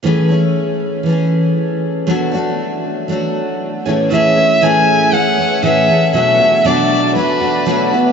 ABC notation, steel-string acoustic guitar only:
X:1
M:4/4
L:1/8
Q:"Swing 16ths" 1/4=118
K:A
V:1 name="Steel-string acoustic guitar"
[A,,E,A,CG] [A,CG]3 [E,A,CG]4 | [B,,F,A,DF] [A,DF]3 [F,A,DF]3 [A,,E,A,CG] | [A,,E,A,CG] [A,CG] [A,,E,A,CG]2 [E,A,CG] [A,CG] [A,,E,A,CG] [A,CG] | [B,,F,A,DF] [A,DF] [B,,F,A,DF]2 [F,A,DF] [A,DF] [B,,F,A,DF] [A,B,F] |]